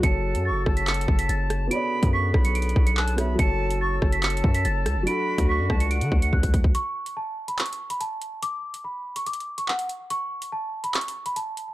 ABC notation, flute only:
X:1
M:4/4
L:1/8
Q:1/4=143
K:F#m
V:1 name="Flute"
a2 c' a4- a | b2 c' b3 a b | a2 c' a4- a | b2 c' a f2 z2 |
z8 | z8 | z8 |]